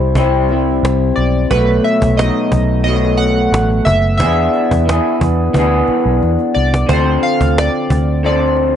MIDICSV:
0, 0, Header, 1, 6, 480
1, 0, Start_track
1, 0, Tempo, 673627
1, 1075, Time_signature, 4, 2, 24, 8
1, 6242, End_track
2, 0, Start_track
2, 0, Title_t, "Synth keys"
2, 0, Program_c, 0, 88
2, 824, Note_on_c, 0, 74, 77
2, 1052, Note_off_c, 0, 74, 0
2, 1073, Note_on_c, 0, 71, 98
2, 1313, Note_on_c, 0, 76, 93
2, 1321, Note_off_c, 0, 71, 0
2, 1549, Note_on_c, 0, 75, 95
2, 1561, Note_off_c, 0, 76, 0
2, 2003, Note_off_c, 0, 75, 0
2, 2023, Note_on_c, 0, 75, 108
2, 2262, Note_on_c, 0, 78, 110
2, 2276, Note_off_c, 0, 75, 0
2, 2719, Note_off_c, 0, 78, 0
2, 2743, Note_on_c, 0, 76, 99
2, 2966, Note_off_c, 0, 76, 0
2, 2975, Note_on_c, 0, 76, 102
2, 3676, Note_off_c, 0, 76, 0
2, 4663, Note_on_c, 0, 74, 95
2, 4907, Note_on_c, 0, 72, 86
2, 4916, Note_off_c, 0, 74, 0
2, 5151, Note_on_c, 0, 77, 102
2, 5158, Note_off_c, 0, 72, 0
2, 5399, Note_off_c, 0, 77, 0
2, 5404, Note_on_c, 0, 74, 93
2, 5850, Note_off_c, 0, 74, 0
2, 5885, Note_on_c, 0, 74, 84
2, 6103, Note_off_c, 0, 74, 0
2, 6242, End_track
3, 0, Start_track
3, 0, Title_t, "Clean electric guitar"
3, 0, Program_c, 1, 27
3, 0, Note_on_c, 1, 48, 64
3, 0, Note_on_c, 1, 55, 59
3, 0, Note_on_c, 1, 60, 57
3, 0, Note_on_c, 1, 64, 66
3, 102, Note_off_c, 1, 48, 0
3, 106, Note_off_c, 1, 55, 0
3, 110, Note_on_c, 1, 48, 101
3, 114, Note_off_c, 1, 60, 0
3, 115, Note_on_c, 1, 55, 94
3, 121, Note_off_c, 1, 64, 0
3, 123, Note_on_c, 1, 60, 104
3, 131, Note_on_c, 1, 64, 89
3, 343, Note_off_c, 1, 64, 0
3, 352, Note_off_c, 1, 48, 0
3, 352, Note_on_c, 1, 64, 64
3, 355, Note_off_c, 1, 55, 0
3, 356, Note_off_c, 1, 60, 0
3, 365, Note_on_c, 1, 60, 59
3, 376, Note_on_c, 1, 55, 49
3, 1073, Note_off_c, 1, 64, 0
3, 1073, Note_on_c, 1, 47, 84
3, 1077, Note_off_c, 1, 55, 0
3, 1079, Note_off_c, 1, 60, 0
3, 1080, Note_on_c, 1, 54, 85
3, 1085, Note_on_c, 1, 57, 101
3, 1537, Note_off_c, 1, 47, 0
3, 1546, Note_on_c, 1, 47, 64
3, 1551, Note_off_c, 1, 54, 0
3, 1558, Note_off_c, 1, 57, 0
3, 1560, Note_on_c, 1, 54, 64
3, 1566, Note_on_c, 1, 57, 64
3, 1574, Note_on_c, 1, 63, 65
3, 2010, Note_off_c, 1, 47, 0
3, 2019, Note_on_c, 1, 47, 80
3, 2029, Note_off_c, 1, 54, 0
3, 2038, Note_on_c, 1, 54, 90
3, 2040, Note_off_c, 1, 57, 0
3, 2044, Note_off_c, 1, 63, 0
3, 2050, Note_on_c, 1, 57, 96
3, 2983, Note_off_c, 1, 54, 0
3, 2986, Note_off_c, 1, 47, 0
3, 2986, Note_on_c, 1, 52, 74
3, 2991, Note_off_c, 1, 57, 0
3, 2994, Note_on_c, 1, 59, 92
3, 3000, Note_on_c, 1, 62, 84
3, 3006, Note_on_c, 1, 68, 105
3, 3450, Note_off_c, 1, 52, 0
3, 3459, Note_on_c, 1, 52, 61
3, 3464, Note_off_c, 1, 59, 0
3, 3472, Note_on_c, 1, 59, 58
3, 3480, Note_off_c, 1, 62, 0
3, 3480, Note_off_c, 1, 68, 0
3, 3485, Note_on_c, 1, 62, 57
3, 3490, Note_on_c, 1, 68, 64
3, 3935, Note_off_c, 1, 52, 0
3, 3943, Note_on_c, 1, 52, 92
3, 3953, Note_off_c, 1, 59, 0
3, 3961, Note_on_c, 1, 59, 91
3, 3962, Note_off_c, 1, 68, 0
3, 3965, Note_off_c, 1, 62, 0
3, 3972, Note_on_c, 1, 62, 89
3, 3983, Note_on_c, 1, 68, 95
3, 4892, Note_on_c, 1, 50, 80
3, 4909, Note_off_c, 1, 52, 0
3, 4910, Note_off_c, 1, 59, 0
3, 4913, Note_on_c, 1, 60, 84
3, 4920, Note_off_c, 1, 62, 0
3, 4923, Note_on_c, 1, 65, 87
3, 4928, Note_off_c, 1, 68, 0
3, 4936, Note_on_c, 1, 69, 91
3, 5857, Note_off_c, 1, 50, 0
3, 5866, Note_on_c, 1, 50, 86
3, 5868, Note_off_c, 1, 65, 0
3, 5871, Note_off_c, 1, 60, 0
3, 5874, Note_on_c, 1, 60, 94
3, 5875, Note_off_c, 1, 69, 0
3, 5876, Note_on_c, 1, 65, 81
3, 5884, Note_on_c, 1, 69, 91
3, 6242, Note_off_c, 1, 50, 0
3, 6242, Note_off_c, 1, 60, 0
3, 6242, Note_off_c, 1, 65, 0
3, 6242, Note_off_c, 1, 69, 0
3, 6242, End_track
4, 0, Start_track
4, 0, Title_t, "Fingered electric bass"
4, 0, Program_c, 2, 33
4, 0, Note_on_c, 2, 36, 98
4, 564, Note_off_c, 2, 36, 0
4, 592, Note_on_c, 2, 36, 98
4, 785, Note_off_c, 2, 36, 0
4, 836, Note_on_c, 2, 35, 97
4, 1028, Note_off_c, 2, 35, 0
4, 1076, Note_on_c, 2, 35, 117
4, 1267, Note_off_c, 2, 35, 0
4, 1440, Note_on_c, 2, 35, 100
4, 1630, Note_off_c, 2, 35, 0
4, 1792, Note_on_c, 2, 35, 99
4, 2485, Note_off_c, 2, 35, 0
4, 2509, Note_on_c, 2, 33, 93
4, 2703, Note_off_c, 2, 33, 0
4, 2755, Note_on_c, 2, 30, 102
4, 2991, Note_on_c, 2, 40, 101
4, 3002, Note_off_c, 2, 30, 0
4, 3184, Note_off_c, 2, 40, 0
4, 3358, Note_on_c, 2, 40, 95
4, 3548, Note_off_c, 2, 40, 0
4, 3715, Note_on_c, 2, 40, 96
4, 3906, Note_off_c, 2, 40, 0
4, 3947, Note_on_c, 2, 38, 98
4, 4142, Note_off_c, 2, 38, 0
4, 4314, Note_on_c, 2, 35, 100
4, 4410, Note_off_c, 2, 35, 0
4, 4436, Note_on_c, 2, 40, 90
4, 4531, Note_off_c, 2, 40, 0
4, 4675, Note_on_c, 2, 36, 111
4, 4867, Note_off_c, 2, 36, 0
4, 4912, Note_on_c, 2, 38, 115
4, 5105, Note_off_c, 2, 38, 0
4, 5281, Note_on_c, 2, 38, 108
4, 5470, Note_off_c, 2, 38, 0
4, 5632, Note_on_c, 2, 38, 84
4, 6242, Note_off_c, 2, 38, 0
4, 6242, End_track
5, 0, Start_track
5, 0, Title_t, "Cajon"
5, 110, Note_on_c, 9, 36, 97
5, 181, Note_off_c, 9, 36, 0
5, 347, Note_on_c, 9, 38, 38
5, 418, Note_off_c, 9, 38, 0
5, 604, Note_on_c, 9, 38, 123
5, 676, Note_off_c, 9, 38, 0
5, 834, Note_on_c, 9, 38, 45
5, 905, Note_off_c, 9, 38, 0
5, 1074, Note_on_c, 9, 36, 104
5, 1145, Note_off_c, 9, 36, 0
5, 1314, Note_on_c, 9, 38, 41
5, 1385, Note_off_c, 9, 38, 0
5, 1438, Note_on_c, 9, 36, 98
5, 1510, Note_off_c, 9, 36, 0
5, 1562, Note_on_c, 9, 38, 122
5, 1633, Note_off_c, 9, 38, 0
5, 1794, Note_on_c, 9, 36, 96
5, 1865, Note_off_c, 9, 36, 0
5, 2042, Note_on_c, 9, 38, 50
5, 2114, Note_off_c, 9, 38, 0
5, 2522, Note_on_c, 9, 38, 117
5, 2593, Note_off_c, 9, 38, 0
5, 2754, Note_on_c, 9, 36, 90
5, 2825, Note_off_c, 9, 36, 0
5, 2992, Note_on_c, 9, 36, 112
5, 3063, Note_off_c, 9, 36, 0
5, 3233, Note_on_c, 9, 38, 41
5, 3304, Note_off_c, 9, 38, 0
5, 3359, Note_on_c, 9, 36, 98
5, 3430, Note_off_c, 9, 36, 0
5, 3485, Note_on_c, 9, 38, 126
5, 3556, Note_off_c, 9, 38, 0
5, 3714, Note_on_c, 9, 36, 93
5, 3785, Note_off_c, 9, 36, 0
5, 3950, Note_on_c, 9, 36, 103
5, 4021, Note_off_c, 9, 36, 0
5, 4187, Note_on_c, 9, 38, 37
5, 4258, Note_off_c, 9, 38, 0
5, 4437, Note_on_c, 9, 38, 47
5, 4508, Note_off_c, 9, 38, 0
5, 4553, Note_on_c, 9, 38, 24
5, 4625, Note_off_c, 9, 38, 0
5, 4672, Note_on_c, 9, 38, 46
5, 4743, Note_off_c, 9, 38, 0
5, 4801, Note_on_c, 9, 38, 93
5, 4872, Note_off_c, 9, 38, 0
5, 4911, Note_on_c, 9, 36, 111
5, 4982, Note_off_c, 9, 36, 0
5, 5154, Note_on_c, 9, 38, 35
5, 5225, Note_off_c, 9, 38, 0
5, 5278, Note_on_c, 9, 36, 96
5, 5349, Note_off_c, 9, 36, 0
5, 5403, Note_on_c, 9, 38, 118
5, 5474, Note_off_c, 9, 38, 0
5, 5632, Note_on_c, 9, 36, 103
5, 5703, Note_off_c, 9, 36, 0
5, 5876, Note_on_c, 9, 38, 52
5, 5947, Note_off_c, 9, 38, 0
5, 6105, Note_on_c, 9, 38, 32
5, 6176, Note_off_c, 9, 38, 0
5, 6242, End_track
6, 0, Start_track
6, 0, Title_t, "Muted fingered electric bass strokes"
6, 4191, Note_on_c, 9, 29, 56
6, 4262, Note_off_c, 9, 29, 0
6, 6242, End_track
0, 0, End_of_file